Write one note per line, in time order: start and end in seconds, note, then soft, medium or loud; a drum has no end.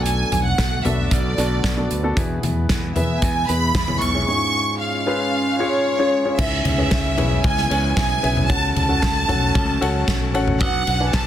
0.00 0.23 B1 medium
0.00 2.15 D3 medium
0.00 2.13 F#3 medium
0.00 2.13 A3 medium
0.00 0.72 B3 medium
0.00 4.24 B3 medium
0.00 0.72 D4 medium
0.00 0.72 F#4 medium
0.00 2.15 F#4 medium
0.00 0.72 A4 medium
0.06 0.43 G#5 medium
0.06 closed hi-hat medium
0.32 0.54 B1 medium
0.32 closed hi-hat medium
0.32 floor tom medium
0.45 0.82 F#5 medium
0.58 0.80 B1 medium
0.58 kick loud
0.58 snare loud
0.58 closed hi-hat medium
0.85 1.07 B1 medium
0.85 1.31 B3 medium
0.85 1.31 D4 medium
0.85 1.31 F#4 medium
0.85 1.31 A4 medium
0.85 1.11 E5 medium
0.85 closed hi-hat medium
0.85 floor tom medium
1.11 1.33 B1 loud
1.11 1.91 D5 medium
1.11 kick loud
1.11 closed hi-hat medium
1.37 1.60 B1 medium
1.37 1.72 B3 medium
1.37 1.72 D4 medium
1.37 1.72 F#4 medium
1.37 1.73 A4 medium
1.37 closed hi-hat medium
1.64 1.86 B1 loud
1.64 kick medium
1.64 snare loud
1.64 closed hi-hat medium
1.77 2.00 B3 medium
1.77 2.00 D4 medium
1.77 2.00 F#4 medium
1.77 2.00 A4 medium
1.91 2.12 D2 medium
1.91 closed hi-hat medium
2.03 2.15 B3 medium
2.03 2.15 D4 medium
2.03 2.15 F#4 medium
2.03 2.15 A4 medium
2.16 2.38 E2 loud
2.16 2.92 B2 medium
2.16 6.35 G#3 medium
2.16 2.86 B3 medium
2.16 2.86 E4 medium
2.16 4.26 E4 medium
2.16 2.86 G#4 medium
2.16 2.86 B4 medium
2.16 kick loud
2.16 closed hi-hat medium
2.43 2.65 E2 medium
2.43 closed hi-hat medium
2.43 floor tom medium
2.69 2.91 E2 medium
2.69 kick loud
2.69 snare loud
2.69 closed hi-hat loud
2.96 3.18 E2 medium
2.96 3.42 B3 medium
2.96 3.42 E4 medium
2.96 3.42 G#4 medium
2.96 3.42 B4 medium
2.96 3.20 E5 medium
2.96 closed hi-hat medium
2.96 floor tom medium
3.22 3.44 E2 loud
3.22 3.49 G#5 medium
3.22 kick loud
3.22 closed hi-hat medium
3.48 3.71 E2 loud
3.48 3.83 B3 medium
3.48 3.83 E4 medium
3.48 3.83 G#4 medium
3.48 3.84 B4 medium
3.48 4.02 B5 loud
3.48 closed hi-hat medium
3.75 4.02 E2 loud
3.75 kick loud
3.75 snare loud
3.75 closed hi-hat medium
3.88 4.11 B3 medium
3.88 4.11 E4 medium
3.88 4.11 G#4 medium
3.88 4.11 C#5 medium
3.88 floor tom medium
4.01 4.23 B1 medium
4.01 4.27 C#6 medium
4.01 closed hi-hat medium
4.14 4.26 B3 medium
4.14 4.26 E4 medium
4.14 4.26 G#4 medium
4.14 4.26 C#5 medium
4.28 5.03 G#2 medium
4.28 4.97 C#4 medium
4.28 6.37 C#4 medium
4.28 4.34 E4 soft
4.28 6.37 F4 medium
4.28 4.97 G#4 medium
4.28 4.97 C#5 medium
4.28 4.77 C#6 loud
4.34 5.00 F4 medium
4.81 6.09 F5 medium
5.06 5.53 C#4 medium
5.06 5.53 F4 medium
5.06 5.53 G#4 medium
5.06 5.53 B4 medium
5.59 5.94 C#4 medium
5.59 5.94 F4 medium
5.59 5.95 G#4 medium
5.59 5.95 C#5 loud
5.59 6.35 C#5 medium
5.99 6.22 C#4 medium
5.99 6.22 F4 medium
5.99 6.22 G#4 medium
5.99 6.22 C#5 loud
6.25 6.37 C#4 medium
6.25 6.37 F4 medium
6.25 6.37 G#4 medium
6.25 6.37 C#5 medium
6.38 6.61 C#2 loud
6.38 7.14 G#2 medium
6.38 8.48 C#3 medium
6.38 8.48 E3 medium
6.38 8.48 G#3 medium
6.38 8.48 B3 medium
6.38 6.73 C#4 medium
6.38 6.73 E4 medium
6.38 8.48 E4 medium
6.38 6.73 G#4 medium
6.38 6.73 B4 medium
6.38 6.64 E5 medium
6.38 kick loud
6.38 crash loud
6.65 6.87 C#2 loud
6.65 7.41 E5 medium
6.65 floor tom medium
6.65 ride medium
6.78 7.13 C#4 medium
6.78 7.13 E4 medium
6.78 7.13 G#4 medium
6.78 7.13 B4 medium
6.78 7.13 E5 medium
6.91 7.18 C#2 medium
6.91 kick loud
6.91 snare loud
6.91 ride medium
7.17 7.40 B1 loud
7.17 7.64 C#4 medium
7.17 7.64 E4 medium
7.17 7.64 G#4 medium
7.17 7.64 B4 medium
7.17 7.64 C#5 medium
7.17 floor tom medium
7.17 ride medium
7.44 7.66 C#2 loud
7.44 7.96 G#5 loud
7.44 kick loud
7.44 ride medium
7.57 snare soft
7.70 7.92 C#2 loud
7.70 8.16 C#4 medium
7.70 8.16 E4 medium
7.70 8.17 G#4 medium
7.70 8.17 B4 medium
7.70 8.17 C#5 medium
7.70 ride medium
7.97 8.19 B1 loud
7.97 8.46 G#5 loud
7.97 kick loud
7.97 snare loud
7.97 ride medium
8.23 8.50 B1 medium
8.23 8.46 C#4 medium
8.23 8.46 E4 medium
8.23 8.46 G#4 medium
8.23 8.46 B4 medium
8.23 8.46 E5 medium
8.23 ride medium
8.37 floor tom medium
8.48 8.71 C#2 loud
8.48 9.24 C#3 medium
8.48 11.27 F#3 medium
8.48 10.59 A3 medium
8.48 8.84 C#4 medium
8.48 10.59 C#4 medium
8.48 8.84 F#4 medium
8.48 8.84 A4 medium
8.48 8.84 C#5 medium
8.48 8.84 F#5 medium
8.48 8.75 A5 loud
8.48 kick loud
8.48 ride medium
8.76 8.98 C#2 medium
8.76 10.30 A5 loud
8.76 floor tom medium
8.76 ride medium
8.88 9.24 C#4 medium
8.88 9.24 F#4 medium
8.88 9.24 A4 medium
8.88 9.24 C#5 medium
8.88 9.24 F#5 medium
9.02 9.25 C#2 loud
9.02 kick loud
9.02 snare loud
9.02 ride medium
9.28 9.51 B1 medium
9.28 9.75 C#4 medium
9.28 9.75 F#4 medium
9.28 9.75 A4 medium
9.28 9.75 C#5 medium
9.28 9.75 F#5 medium
9.28 floor tom medium
9.28 ride medium
9.55 9.77 C#2 loud
9.55 kick loud
9.55 ride medium
9.81 10.03 C#2 medium
9.81 10.27 C#4 medium
9.81 10.27 F#4 medium
9.81 10.28 A4 medium
9.81 10.28 C#5 medium
9.81 10.28 F#5 loud
9.81 ride medium
10.08 10.35 B1 medium
10.08 kick loud
10.08 snare loud
10.08 ride medium
10.34 10.61 A1 medium
10.34 10.57 C#4 loud
10.34 10.57 F#4 medium
10.34 10.58 A4 medium
10.34 10.58 C#5 loud
10.34 10.58 F#5 loud
10.34 ride medium
10.48 floor tom medium
10.60 10.82 B1 loud
10.60 11.27 B3 medium
10.60 10.95 D4 medium
10.60 11.27 D4 medium
10.60 11.10 F#5 loud
10.60 kick loud
10.60 ride medium
10.87 11.09 B1 loud
10.87 ride medium
11.00 11.27 D4 medium
11.00 11.27 F#4 medium
11.00 11.27 B4 medium
11.00 11.27 D5 medium
11.00 11.27 G#5 medium
11.13 11.27 B1 loud
11.13 11.27 A5 medium
11.13 kick loud
11.13 snare loud
11.13 ride medium